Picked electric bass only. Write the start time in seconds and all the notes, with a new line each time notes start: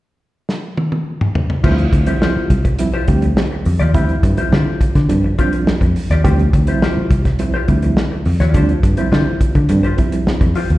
1.64 D2
1.93 D2
2.37 muted picked electric bass stroke
2.50 C2
3.08 D2
3.66 F2
3.81 D#2
3.95 D2
4.23 G2
4.52 D3
4.81 muted picked electric bass stroke
4.95 D3
5.10 G2
5.68 muted picked electric bass stroke
5.81 F2
6.10 D#2
6.25 D2
6.53 D2
6.97 muted picked electric bass stroke
7.11 C2
7.69 D2
8.26 F2
8.40 D#2
8.55 D2
8.83 G2
9.12 D3
9.41 muted picked electric bass stroke
9.55 D3
9.70 G2
10.27 muted picked electric bass stroke
10.41 F2
10.70 D#2